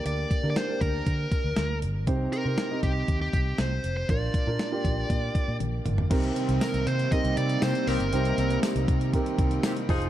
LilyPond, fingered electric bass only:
\new Staff \with { instrumentName = "Fingered electric bass" } { \clef bass \time 4/4 \key c \minor \tempo 4 = 119 d,8 r16 d16 r8 d,8 d8 r16 d,16 d,8 g,,8 | c,8 r16 c16 r8 c,8 ees,8 c,8 c,8 f,,8 | bes,,8 r16 bes,16 r8 bes,,8 bes,8 r16 bes,16 bes,,8 g,,8 | c,8 r16 c,16 r16 c,16 c8 r16 c,16 c8 c16 r16 c,16 g,,16 |
c,8 c,8 r16 c,16 c8. r16 c,8 r8 f,,8 | }